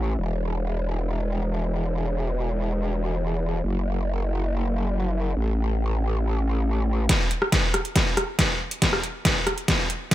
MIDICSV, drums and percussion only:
0, 0, Header, 1, 2, 480
1, 0, Start_track
1, 0, Tempo, 431655
1, 207, Time_signature, 4, 2, 24, 8
1, 11281, End_track
2, 0, Start_track
2, 0, Title_t, "Drums"
2, 7887, Note_on_c, 9, 36, 94
2, 7887, Note_on_c, 9, 38, 48
2, 7887, Note_on_c, 9, 42, 83
2, 7998, Note_off_c, 9, 36, 0
2, 7998, Note_off_c, 9, 38, 0
2, 7998, Note_off_c, 9, 42, 0
2, 8127, Note_on_c, 9, 42, 51
2, 8238, Note_off_c, 9, 42, 0
2, 8249, Note_on_c, 9, 37, 55
2, 8360, Note_off_c, 9, 37, 0
2, 8367, Note_on_c, 9, 36, 99
2, 8367, Note_on_c, 9, 38, 50
2, 8367, Note_on_c, 9, 42, 84
2, 8478, Note_off_c, 9, 36, 0
2, 8478, Note_off_c, 9, 38, 0
2, 8478, Note_off_c, 9, 42, 0
2, 8607, Note_on_c, 9, 37, 49
2, 8607, Note_on_c, 9, 42, 56
2, 8718, Note_off_c, 9, 37, 0
2, 8718, Note_off_c, 9, 42, 0
2, 8729, Note_on_c, 9, 42, 36
2, 8840, Note_off_c, 9, 42, 0
2, 8847, Note_on_c, 9, 36, 99
2, 8847, Note_on_c, 9, 38, 46
2, 8847, Note_on_c, 9, 42, 79
2, 8958, Note_off_c, 9, 36, 0
2, 8958, Note_off_c, 9, 38, 0
2, 8958, Note_off_c, 9, 42, 0
2, 9087, Note_on_c, 9, 37, 57
2, 9087, Note_on_c, 9, 42, 55
2, 9198, Note_off_c, 9, 37, 0
2, 9198, Note_off_c, 9, 42, 0
2, 9327, Note_on_c, 9, 36, 92
2, 9327, Note_on_c, 9, 38, 49
2, 9327, Note_on_c, 9, 42, 82
2, 9438, Note_off_c, 9, 36, 0
2, 9438, Note_off_c, 9, 38, 0
2, 9438, Note_off_c, 9, 42, 0
2, 9689, Note_on_c, 9, 42, 64
2, 9800, Note_off_c, 9, 42, 0
2, 9807, Note_on_c, 9, 36, 96
2, 9807, Note_on_c, 9, 38, 52
2, 9807, Note_on_c, 9, 42, 78
2, 9918, Note_off_c, 9, 36, 0
2, 9918, Note_off_c, 9, 38, 0
2, 9918, Note_off_c, 9, 42, 0
2, 9929, Note_on_c, 9, 37, 55
2, 10040, Note_off_c, 9, 37, 0
2, 10047, Note_on_c, 9, 42, 54
2, 10158, Note_off_c, 9, 42, 0
2, 10287, Note_on_c, 9, 36, 97
2, 10287, Note_on_c, 9, 38, 52
2, 10287, Note_on_c, 9, 42, 81
2, 10398, Note_off_c, 9, 36, 0
2, 10398, Note_off_c, 9, 38, 0
2, 10398, Note_off_c, 9, 42, 0
2, 10527, Note_on_c, 9, 37, 50
2, 10527, Note_on_c, 9, 42, 55
2, 10638, Note_off_c, 9, 37, 0
2, 10638, Note_off_c, 9, 42, 0
2, 10649, Note_on_c, 9, 42, 37
2, 10760, Note_off_c, 9, 42, 0
2, 10767, Note_on_c, 9, 36, 96
2, 10767, Note_on_c, 9, 38, 54
2, 10767, Note_on_c, 9, 42, 78
2, 10878, Note_off_c, 9, 36, 0
2, 10878, Note_off_c, 9, 38, 0
2, 10878, Note_off_c, 9, 42, 0
2, 11007, Note_on_c, 9, 42, 55
2, 11118, Note_off_c, 9, 42, 0
2, 11246, Note_on_c, 9, 38, 57
2, 11246, Note_on_c, 9, 42, 82
2, 11247, Note_on_c, 9, 36, 95
2, 11281, Note_off_c, 9, 36, 0
2, 11281, Note_off_c, 9, 38, 0
2, 11281, Note_off_c, 9, 42, 0
2, 11281, End_track
0, 0, End_of_file